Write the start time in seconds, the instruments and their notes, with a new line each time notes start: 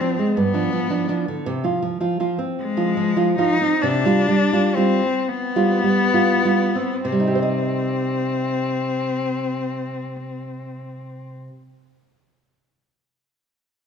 0.01 nylon-string guitar F3 C4, cello C4
0.19 nylon-string guitar G#3
0.36 nylon-string guitar G2, cello B3
0.54 nylon-string guitar F3 D4
0.73 nylon-string guitar F3
0.90 nylon-string guitar F3 D4
1.09 nylon-string guitar F3 D4
1.28 nylon-string guitar D3
1.46 nylon-string guitar C3
1.64 nylon-string guitar F3 F4
1.82 nylon-string guitar F3
2.00 nylon-string guitar F3 F4
2.20 nylon-string guitar F3 F4
2.39 nylon-string guitar C4
2.59 cello G#3
2.77 nylon-string guitar F3 F4
2.97 nylon-string guitar F3
3.17 nylon-string guitar F3 F4
3.38 nylon-string guitar F3 F4, cello D#4
3.61 nylon-string guitar C4
3.82 nylon-string guitar C3, cello D4
4.05 nylon-string guitar G3 F4
4.28 nylon-string guitar G3
4.53 nylon-string guitar G3 F4
4.76 nylon-string guitar G3 F4, cello C4
5.03 nylon-string guitar C4
5.28 cello B3
5.56 nylon-string guitar G3 F4
5.84 nylon-string guitar G3
6.14 nylon-string guitar G3 F4
6.45 nylon-string guitar G3 F4
6.75 nylon-string guitar C4
7.04 nylon-string guitar C3, cello C4
7.12 nylon-string guitar G3
7.20 nylon-string guitar D#4
7.27 nylon-string guitar G4
7.35 nylon-string guitar C5
7.42 nylon-string guitar D#5